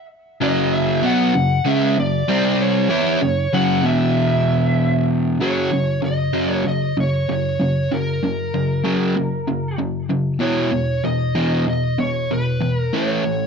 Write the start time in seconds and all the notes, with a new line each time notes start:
0.41 F#2 C#3 F#3 D#5
0.74 E5
1.03 B2 F#3 B3 F#5
1.35 F#2 C#3
1.65 C#3 G#3 C#4 E5
1.98 F#2 C#3 D5
2.28 C3 G3 C4
2.61 C#5
2.89 E3 B3 E4
3.21 F#2 C#3
3.53 F#2 C#3 F#3 F#5
3.84 E2 B2 E3 E5
5.40 F#2 C#3 F#3 C#5
5.72 F#2 C#3
6.02 F#2 C#3 D#5
6.33 F#2 C#3 F#3
6.53 C#5
6.65 F#2 C#3 D#5
6.97 F#2 C#3 C#5
7.29 F#2 C#3 C#5
7.60 F#2 C#3
7.92 F#2 C#3 A#4
8.23 F#2 C#3
8.54 F#2 C#3
8.84 F#2 C#3 F#3
9.16 F#2 C#3
9.47 F#2 C#3
9.78 F#2 C#3
10.09 F#2 C#3
10.39 E2 B2 E3 C#5
10.71 E2 B2
11.04 E2 B2 D#5
11.35 E2 B2 E3
11.67 E2 B2 D#5
11.99 E2 B2 C#5
12.31 E2 B2 B4
12.61 E2 B2
12.77 A#4
12.93 A2 E3 A3 C#5
13.24 A2 E3